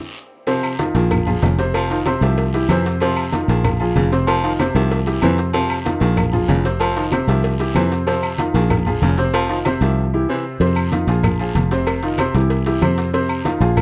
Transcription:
0.47 C3 F3 C4 C5, cowbell, high conga, low agogo, long guiro
0.63 high conga, low agogo, claves
0.79 D#3 D#4 F4, cowbell, high conga, low agogo, short guiro
0.94 A#1 D#3 F3 F4 G#4, cowbell, short guiro
1.11 cowbell, high conga, low conga, low agogo, long guiro, claves
1.26 F3 F4 G#4, high conga, low conga, low agogo
1.42 F1 C#3, cowbell, high conga, low timbale, low agogo, short guiro
1.58 C3 C4 C5, cowbell, short guiro
1.74 F3, cowbell, high conga, low agogo, long guiro, claves
1.90 D#3 D#4 F4, cowbell, high conga
2.05 C3 C4 C5, cowbell, high conga, low agogo, short guiro, claves
2.21 C2 D#3 F3 G4 E5, cowbell, short guiro
2.38 cowbell, low agogo, long guiro
2.53 E3 E4 G4, cowbell, high conga, low agogo
2.69 F2 C3 E3 C4 C5, cowbell, high conga, low agogo, short guiro, claves
2.85 cowbell, short guiro
3.00 C3 F3 C4 C5, cowbell, high conga, low agogo, long guiro
3.16 high conga, low agogo, claves
3.32 D#3 D#4 F4, cowbell, high conga, low agogo, short guiro
3.48 A#1 D#3 F3 F4 G#4, cowbell, high conga, short guiro
3.64 cowbell, high conga, low conga, low agogo, long guiro, claves
3.80 F3 F4 G#4, high conga, low agogo
3.95 F1 C#3, cowbell, high conga, low agogo, short guiro
4.12 C3 C4 C5, cowbell, short guiro
4.27 F3, cowbell, high conga, low agogo, long guiro, claves
4.43 D#3 D#4 F4, cowbell, high conga
4.59 C3 C4 C5, cowbell, high conga, low agogo, short guiro, claves
4.75 C2 D#3 F3 G4 E5, cowbell, short guiro
4.91 cowbell, low agogo, long guiro
5.06 E3 E4 G4, cowbell, high conga, low agogo
5.22 F2 C3 E3 C4 C5, cowbell, high conga, low agogo, short guiro, claves
5.38 cowbell, high conga, short guiro
5.53 C3 F3 C4 C5, cowbell, high conga, low agogo, long guiro
5.70 high conga, low agogo, claves
5.85 D#3 D#4 F4, cowbell, high conga, low agogo, short guiro
6.01 A#1 D#3 F3 F4 G#4, cowbell, short guiro
6.17 cowbell, high conga, low conga, low agogo, long guiro, claves
6.32 F3 F4 G#4, high conga, low conga, low agogo
6.48 F1 C#3, cowbell, high conga, low timbale, low agogo, short guiro
6.64 C3 C4 C5, cowbell, high conga, short guiro
6.80 F3, cowbell, high conga, low agogo, long guiro, claves
6.96 D#3 D#4 F4, cowbell, high conga
7.11 C3 C4 C5, cowbell, high conga, low agogo, short guiro, claves
7.27 C2 D#3 F3 G4 E5, cowbell, short guiro
7.43 cowbell, high conga, low agogo, long guiro
7.59 E3 E4 G4, cowbell, high conga, low agogo
7.75 F2 C3 E3 C4 C5, cowbell, high conga, low agogo, short guiro, claves
7.92 cowbell, high conga, short guiro
8.06 C3 F3 C4 C5, cowbell, high conga, low agogo, long guiro
8.23 high conga, low agogo, claves
8.38 D#3 D#4 F4, cowbell, high conga, low agogo, short guiro
8.54 A#1 D#3 F3 F4 G#4, cowbell, short guiro
8.70 cowbell, high conga, low conga, low agogo, long guiro, claves
8.86 F3 F4 G#4, high conga, low conga, low agogo
9.02 F1 C#3, cowbell, high conga, low timbale, low agogo, short guiro
9.18 C3 C4 C5, cowbell, short guiro
9.34 F3, cowbell, high conga, low agogo, long guiro, claves
9.49 D#3 D#4 F4, cowbell, high conga
9.65 C3 C4 C5, cowbell, high conga, low agogo, short guiro, claves
9.81 C2 D#3 F3 G4 E5, cowbell, short guiro
10.14 E3 E4 G4
10.29 C3 E3 C4 C5
10.60 F2 C3 C4 C5, cowbell, high conga, low agogo, long guiro
10.76 high conga, low agogo, claves
10.92 D#3 D#4 F4, cowbell, high conga, low agogo, short guiro
11.07 A#1 F3 F4 G#4, cowbell, short guiro
11.23 cowbell, high conga, low conga, low agogo, long guiro, claves
11.39 F3 F4 G#4, high conga, low agogo
11.55 F1, cowbell, high conga, low agogo, short guiro
11.71 C3 C4 C5, cowbell, high conga, short guiro
11.87 cowbell, high conga, low agogo, long guiro, claves
12.02 D#3 D#4 F4, cowbell, high conga
12.18 C3 C4 C5, cowbell, high conga, low agogo, short guiro, claves
12.34 C2 E3 E4 G4, cowbell, short guiro
12.50 cowbell, high conga, low agogo, long guiro
12.66 E3 E4 G4, cowbell, high conga, low agogo
12.82 F2 C3 C4 C5, cowbell, high conga, low agogo, short guiro, claves
12.98 cowbell, high conga, short guiro
13.13 C3 C4 C5, cowbell, high conga, low agogo, long guiro
13.29 high conga, low agogo, claves
13.45 D#3 D#4 F4, cowbell, high conga, low agogo, short guiro
13.60 A#1 F3 F4 G#4, cowbell, short guiro
13.77 cowbell, high conga, low conga, low agogo, long guiro, claves

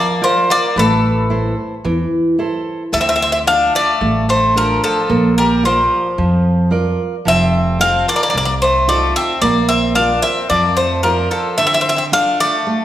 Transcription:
Already playing: F3 A#3 D5
0.22 F3 F4 A#4 C5 D5
0.50 A#3 D5
0.76 A1 E3 A3 A4
1.30 E4 A4 C5
1.85 E2 E3
2.39 E4 A4 C5
2.92 D2 D3 A3 E5
3.01 C4 E5
3.09 C4 E5
3.16 C4 E5
3.22 C4 E5
3.32 C4 E5
3.46 D4 F4 A4 F5
3.75 A3 D5
4.01 A1 A3
4.29 A3 C5
4.55 F3 D4 F4 A4 A#4
4.84 F3 A4
5.09 A#1 A#3
5.38 G3 A#4
5.63 F3 F4 A#4 C5 D5
6.18 F2 F3
6.71 F4 A#4 D5
7.25 F1 F3 C4 E5
7.79 C4 D#4 F4 A4 F5
8.08 A#3 D5
8.16 A#3 D5
8.23 A#3 D5
8.30 C3 A#3 D5
8.34 C2 A#3 D5
8.45 A#3 D5
8.62 A3 C5
8.87 A3 D#4 F4 A4 D5
9.16 C4 E5
9.41 A#1 A#3 D5
9.69 C4 E5
9.95 D4 F4 A#4 D5 F5
10.22 C4 E5
10.49 F2 F3 A#3 D5
10.77 A3 C5
11.03 F3 F4 A#4 D5
11.31 F3 A4
11.58 D3 A3 E5
11.66 C4 E5
11.73 C4 E5
11.81 C4 E5
11.89 C4 E5
11.97 C4 E5
12.12 D4 F4 A4 F5
12.40 A3 D5
12.67 A3

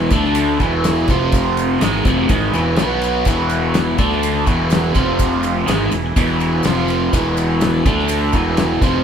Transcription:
Already playing: E2 B2 E3 B3 G#4
0.10 D2 D3 A3 D4 A4, kick, ride, maracas
0.24 snare
0.35 ride, maracas
0.60 E1 E2 B2 E3 B3 G#4, kick, ride, maracas
0.84 snare, ride, maracas
1.08 F1 F2 C3 F3 C4 C5, kick, ride, maracas
1.32 kick, ride, maracas
1.57 ride, maracas
1.81 G#1 G#2 D#3 E3 G#3 B3 G#4, snare, ride, maracas
2.05 F1 F2 C3 F3, kick, ride, maracas
2.29 G#1 G#2 D#3 G#3, kick, ride, maracas
2.53 E1 E2 B2 E3, ride, maracas
2.76 B1 B2 F#3 B3 B4, snare, ride, maracas
3.02 ride, maracas
3.25 E1 E2 B2 E3 G#4, kick, ride, maracas
3.49 ride, maracas
3.74 snare, ride, maracas
3.98 D2 D3 A3 D4 A4, kick, ride, maracas
4.12 snare
4.23 ride, maracas
4.46 E1 E2 B2 E3 B3 G#4, kick, ride, maracas
4.70 snare, ride, maracas
4.94 F1 F2 C3 F3 C4 C5, kick, ride, maracas
5.19 kick, ride, maracas
5.43 ride, maracas
5.67 G#1 G#2 D#3 E3 G#3 B3 G#4, snare, ride, maracas
5.92 E1 E2 B2, ride, maracas
6.16 E1 E2 B2 E3, kick, ride, maracas
6.40 ride, maracas
6.63 F1 F2 C3 F3 C4 C5, snare, ride, maracas
6.88 ride, maracas
7.12 E1 E2 B2 E3 B3 G#4, kick, ride, maracas
7.37 ride, maracas
7.61 snare, ride, maracas
7.86 D2 D3 A3 D4 A4, kick, ride, maracas
7.99 snare
8.08 ride, maracas
8.33 E1 E2 B2 E3 B3 G#4, kick, ride, maracas
8.57 snare, ride, maracas
8.82 F1 F2 C3 F3 C4 C5, kick, ride, maracas

